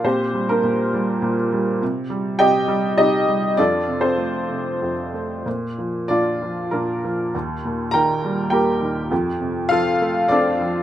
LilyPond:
<<
  \new Staff \with { instrumentName = "Upright piano" } { \time 3/4 \key f \mixolydian \tempo 4 = 100 <c' g' c''>8. <bes d' bes'>4. r8. | r4 <g' ees'' g''>4 <ees' g' ees''>4 | <d' f' a' d''>8. <c' a' c''>4. r8. | r4 <d' f' d''>4 <bes d' bes'>4 |
r4 <bes' g'' bes''>4 <g' bes' g''>4 | r4 <f' a' f''>4 <d' a' d''>4 | }
  \new Staff \with { instrumentName = "Upright piano" } { \clef bass \time 3/4 \key f \mixolydian bes,8 g8 bes,8 g8 bes,8 g8 | c8 g8 c8 g8 c8 g8 | f,8 c8 a8 c8 f,8 a8 | bes,8 f8 bes,8 f8 bes,8 f8 |
ees,8 bes,8 ees8 g8 bes8 ees8 | f,8 c8 f8 a8 c'8 f8 | }
>>